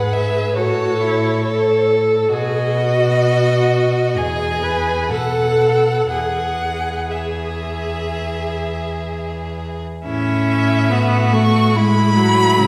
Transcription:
0.00 0.57 G#2 medium
0.00 0.57 G#4 medium
0.00 0.59 B4 soft
0.00 0.14 F#5 medium
0.13 0.56 E5 medium
0.56 2.32 A2 medium
0.56 1.02 F#4 medium
0.56 1.45 A4 medium
0.56 1.87 C#5 medium
1.00 1.44 E4 medium
1.44 2.35 A4 medium
1.44 2.32 A4 medium
2.33 4.19 B2 medium
2.33 4.18 F#4 medium
2.33 2.78 G#4 medium
2.33 4.19 D#5 medium
2.77 4.16 F#4 medium
4.16 5.13 E2 medium
4.16 5.13 G#4 medium
4.16 4.65 G#4 medium
4.16 5.11 G#5 medium
4.63 5.12 B4 medium
5.10 6.09 B2 medium
5.10 6.11 A4 medium
5.10 6.10 A4 soft
5.10 6.08 F#5 medium
6.10 9.82 E2 soft
6.10 9.59 G#4 medium
6.10 7.09 G#4 soft
6.10 7.12 F#5 medium
7.10 9.83 G#4 soft
7.10 9.59 E5 medium
10.05 12.59 A2 medium
10.05 10.92 C#4 medium
10.05 10.93 E4 medium
10.05 11.36 E5 medium
10.90 11.34 B3 medium
10.90 11.77 F#4 medium
11.33 11.76 A3 medium
11.33 11.77 C#6 medium
11.74 12.16 G#3 medium
11.74 12.58 E4 medium
11.74 12.67 B5 loud
12.15 12.57 F#3 medium
12.56 12.67 C#3 medium
12.56 12.67 G#3 medium
12.56 12.67 E4 medium

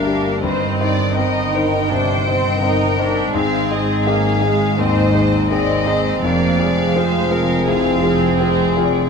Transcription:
0.00 3.29 G1 medium
0.00 0.44 D2 soft
0.00 3.30 G2 medium
0.00 0.38 A#3 soft
0.00 0.45 A#3 soft
0.00 0.07 D4 soft
0.00 0.38 D4 medium
0.00 0.41 D4 medium
0.00 0.07 G4 soft
0.00 0.42 A#4 medium
0.00 0.42 F5 medium
0.07 0.39 D4 soft
0.07 0.39 G4 soft
0.42 0.78 G2 medium
0.42 3.16 D#3 medium
0.42 1.15 C4 medium
0.42 3.16 C4 medium
0.42 0.79 C5 medium
0.42 1.14 D#5 medium
0.81 1.13 D#4 soft
0.81 1.13 C5 soft
0.81 1.17 D5 medium
1.15 1.50 C4 soft
1.15 1.89 D#4 medium
1.15 1.50 D#4 soft
1.15 1.50 C5 soft
1.15 1.53 D#5 medium
1.15 3.33 G5 medium
1.55 1.87 D#4 soft
1.55 1.90 A#4 medium
1.55 1.87 C5 soft
1.91 2.25 C3 medium
1.91 2.26 D4 medium
1.91 2.63 C5 medium
2.27 2.62 C4 medium
2.27 2.59 D#4 soft
2.27 2.59 C5 soft
2.60 2.94 C4 soft
2.60 2.95 D#4 soft
2.60 2.98 D#4 medium
2.60 3.33 A#4 medium
2.60 2.95 C5 soft
2.99 3.35 D4 medium
2.99 3.31 D#4 soft
2.99 3.31 C5 soft
3.33 6.24 G#1 medium
3.33 3.69 G#2 medium
3.33 6.24 G#2 medium
3.33 9.10 C4 medium
3.33 4.07 C4 medium
3.33 6.19 D#4 medium
3.33 4.76 G#4 medium
3.33 3.69 F5 medium
3.70 4.03 D#4 soft
3.70 4.04 G#4 soft
3.70 4.06 D#5 medium
4.05 4.43 A#3 medium
4.05 4.39 C4 soft
4.05 4.39 D#4 soft
4.05 4.39 G#4 medium
4.05 4.77 F5 medium
4.41 4.79 G#3 medium
4.41 4.74 D#4 soft
4.41 4.74 G#4 soft
4.78 5.13 D#2 medium
4.78 5.14 C4 medium
4.78 5.49 C5 medium
4.78 5.51 D#5 medium
5.14 6.22 C4 medium
5.14 5.47 D#4 soft
5.14 5.47 G#4 soft
5.50 5.83 C4 soft
5.50 5.84 D#4 soft
5.50 5.84 G#4 soft
5.50 5.86 D5 medium
5.50 6.22 D#5 medium
5.86 6.19 D#4 soft
5.86 6.20 G#4 medium
5.86 6.23 C5 medium
6.23 9.10 F1 medium
6.23 6.59 F2 medium
6.23 9.10 F2 medium
6.23 6.60 A#3 medium
6.23 9.10 G#4 medium
6.23 6.94 D5 medium
6.23 7.64 F5 medium
6.59 7.68 G#3 medium
6.59 6.91 F4 soft
6.59 6.92 G#4 soft
6.96 7.28 C4 soft
6.96 7.28 F4 soft
6.96 7.28 G#4 medium
6.96 7.32 C5 medium
7.31 7.63 F4 soft
7.31 7.64 G#4 soft
7.31 7.67 A#4 medium
7.66 8.02 C2 medium
7.66 9.10 C4 medium
7.66 8.01 G#4 medium
7.66 8.39 F5 medium
8.03 8.37 F4 soft
8.03 9.10 G#4 medium
8.03 8.36 G#4 soft
8.40 8.73 C4 soft
8.40 8.74 F4 soft
8.40 8.74 G#4 soft
8.40 8.76 C5 medium
8.77 9.10 F4 soft
8.77 9.10 G#4 soft
8.77 9.10 D5 medium

